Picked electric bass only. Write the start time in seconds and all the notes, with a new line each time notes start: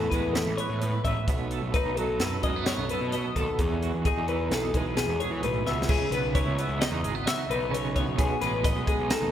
0.11 E2
0.46 A1
0.69 A2
1.04 A1
1.28 B1
1.62 B1
1.85 B1
2.20 F#2
2.43 F#2
2.78 B1
3.01 B2
3.35 D#2
3.59 E2
3.94 E2
4.16 E2
4.49 B1
4.74 B1
5.07 E2
5.31 E3
5.42 B1
5.66 C#2
5.88 C#2
6.11 B1
6.46 C#2
6.68 C#2
6.91 E2
7.03 G#1
7.50 B1
8.07 B1
8.18 B1
8.41 A1
8.75 B1
8.99 B1
9.22 D#2